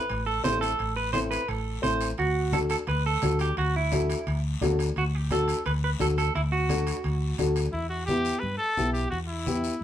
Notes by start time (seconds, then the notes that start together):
Already playing: B4
0.10 A1, high conga, high timbale, long guiro
0.26 A4
0.44 A1 C4 E4 A4 C5, high conga, high timbale, low timbale, short guiro
0.61 A4, high timbale, short guiro
0.79 A1, high conga, high timbale, long guiro
0.96 B4
1.13 C4 E4 A4 C5, high conga, high timbale, short guiro
1.31 B4, high timbale, short guiro
1.48 A1 A4, high conga, high timbale, long guiro
1.82 A1 C4 E4 A4 C5, high conga, high timbale, short guiro
2.01 high timbale, short guiro
2.18 D2 F#4, high conga, high timbale, long guiro
2.52 D4 F#4 A4, high conga, high timbale, short guiro
2.70 A4, high timbale, short guiro
2.87 D2 B4, high conga, high timbale, long guiro
3.06 A4
3.22 D2 D4 F#4 A4, high conga, high timbale, short guiro
3.39 G4, high timbale, short guiro
3.57 D2 F#4, high conga, high timbale, long guiro
3.76 E4
3.92 D4 F#4 A4, high conga, high timbale, short guiro
4.10 high timbale, short guiro
4.27 D2, high conga, high timbale, long guiro
4.61 D2 D4 F#4 A4, high conga, high timbale, low timbale, short guiro
4.79 high timbale, short guiro
4.96 D2 F#4, high conga, high timbale, long guiro
5.15 G4
5.30 D4 F#4 A4, high conga, high timbale, short guiro
5.48 high timbale, short guiro
5.66 D2 B4, high conga, high timbale, long guiro
5.84 B4
5.99 D2 D4 F#4 A4, high conga, high timbale, short guiro
6.18 A4, high timbale, short guiro
6.35 D2 E4, high conga, high timbale, long guiro
6.52 F#4
6.69 D4 F#4 A4, high conga, high timbale, short guiro
6.87 high timbale, short guiro
7.04 D2, high conga, high timbale, long guiro
7.38 D2 D4 F#4 A4, high conga, high timbale, short guiro
7.56 high timbale, short guiro
7.72 E2 E4, high conga, long guiro
7.89 F#4
8.06 B3 E4 G4, high conga, short guiro
8.25 short guiro
8.39 G2 B4, high conga, long guiro
8.57 A4
8.77 B1 B3 E4 G4, high conga, short guiro
8.93 G4, short guiro
9.10 E2 F#4, high conga, long guiro
9.28 E4
9.46 B3 E4 G4, high conga, short guiro
9.64 short guiro